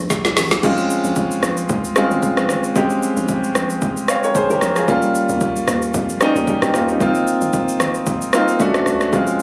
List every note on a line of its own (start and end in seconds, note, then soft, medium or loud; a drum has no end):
0.10 kick medium
0.10 snare medium
0.10 shaker medium
0.25 0.36 B1 loud
0.25 snare medium
0.25 shaker medium
0.37 0.51 A1 loud
0.37 snare loud
0.37 open hi-hat medium
0.37 shaker medium
0.51 0.63 B1 medium
0.51 snare medium
0.51 shaker medium
0.63 1.02 A#1 loud
0.63 1.49 G#3 medium
0.63 1.49 C4 medium
0.63 1.49 C#4 medium
0.63 1.50 F4 medium
0.63 kick loud
0.63 crash medium
0.63 shaker medium
0.77 shaker medium
0.90 shaker medium
1.04 1.41 A#1 loud
1.04 shaker medium
1.16 kick medium
1.16 shaker medium
1.31 shaker medium
1.43 1.68 A#1 loud
1.43 cross-stick medium
1.43 shaker medium
1.57 shaker medium
1.69 2.09 C#2 loud
1.69 kick loud
1.69 shaker medium
1.84 shaker medium
1.96 2.61 G#3 medium
1.96 2.61 C4 medium
1.96 2.61 C#4 medium
1.96 2.62 F4 loud
1.96 cross-stick loud
1.96 shaker medium
2.11 2.22 G#1 medium
2.11 shaker soft
2.23 kick medium
2.23 shaker medium
2.37 2.49 A#1 medium
2.37 cross-stick loud
2.37 shaker medium
2.49 2.77 G#1 medium
2.49 cross-stick medium
2.49 shaker medium
2.64 shaker medium
2.76 3.15 A#1 loud
2.76 3.61 G#3 medium
2.76 3.61 C4 medium
2.76 3.62 C#4 medium
2.76 3.62 G4 medium
2.76 kick loud
2.76 shaker medium
2.90 shaker medium
3.03 shaker loud
3.17 3.53 A#1 loud
3.17 shaker medium
3.28 kick medium
3.28 shaker medium
3.44 shaker medium
3.55 4.06 A#1 medium
3.55 cross-stick loud
3.55 shaker medium
3.70 shaker medium
3.82 kick loud
3.82 shaker medium
3.97 shaker medium
4.08 4.22 C#5 medium
4.08 4.23 F5 medium
4.08 cross-stick loud
4.08 shaker medium
4.23 4.35 A#4 medium
4.23 4.35 C#5 medium
4.23 shaker soft
4.35 4.50 G#4 medium
4.35 4.49 C5 medium
4.35 kick medium
4.35 shaker medium
4.50 4.61 G#1 loud
4.50 4.76 G4 medium
4.50 4.75 A#4 medium
4.50 shaker medium
4.61 4.90 A#1 loud
4.61 cross-stick medium
4.61 shaker medium
4.76 4.88 F4 medium
4.76 5.02 G#4 medium
4.76 cross-stick medium
4.76 shaker medium
4.88 5.27 D#2 loud
4.88 5.74 G3 medium
4.88 5.74 A#3 medium
4.88 5.74 C#4 medium
4.88 5.74 F4 loud
4.88 kick loud
4.88 shaker medium
5.02 shaker medium
5.15 shaker loud
5.29 5.66 D#2 medium
5.29 shaker medium
5.41 kick medium
5.41 shaker medium
5.56 shaker medium
5.68 5.93 D#2 loud
5.68 cross-stick loud
5.68 shaker medium
5.82 shaker medium
5.94 6.33 F2 loud
5.94 kick loud
5.94 shaker medium
6.09 shaker medium
6.21 6.86 G3 medium
6.21 6.86 A#3 medium
6.21 6.48 C#4 medium
6.21 6.48 D#4 loud
6.21 cross-stick loud
6.21 shaker medium
6.35 6.47 D#2 medium
6.35 shaker soft
6.47 6.61 G4 medium
6.47 6.62 A#4 medium
6.47 kick medium
6.47 shaker medium
6.62 6.73 F2 medium
6.62 6.74 D#4 medium
6.62 6.74 G4 medium
6.62 cross-stick loud
6.62 shaker medium
6.74 6.99 D#2 loud
6.74 6.89 C#4 medium
6.74 6.88 F4 medium
6.74 cross-stick loud
6.74 shaker medium
6.88 7.00 C4 medium
6.88 7.00 D#4 medium
6.88 shaker medium
7.00 7.40 G#1 loud
7.00 7.86 A#3 medium
7.00 7.86 C4 medium
7.00 7.87 D#4 medium
7.00 7.87 F4 loud
7.00 kick loud
7.00 shaker medium
7.15 shaker medium
7.27 shaker loud
7.41 7.78 G#1 medium
7.41 shaker medium
7.53 kick medium
7.53 shaker medium
7.69 shaker medium
7.80 8.31 G#1 loud
7.80 cross-stick loud
7.80 shaker medium
7.94 shaker medium
8.06 kick loud
8.06 shaker medium
8.22 shaker medium
8.33 8.60 A#3 medium
8.33 8.60 C4 medium
8.33 8.60 D#4 medium
8.33 8.61 F4 loud
8.33 cross-stick loud
8.33 shaker medium
8.48 shaker soft
8.60 9.03 A3 medium
8.60 9.04 C#4 medium
8.60 9.04 D4 medium
8.60 9.04 F#4 loud
8.60 kick medium
8.60 shaker medium
8.74 8.86 B1 medium
8.74 cross-stick loud
8.74 shaker medium
8.86 9.12 C#2 loud
8.86 cross-stick medium
8.86 shaker medium
9.01 cross-stick medium
9.01 shaker medium
9.13 9.42 A#1 loud
9.13 9.42 G#3 medium
9.13 9.42 C4 medium
9.13 9.42 C#4 medium
9.13 9.42 F4 medium
9.13 kick loud
9.13 shaker medium
9.27 shaker medium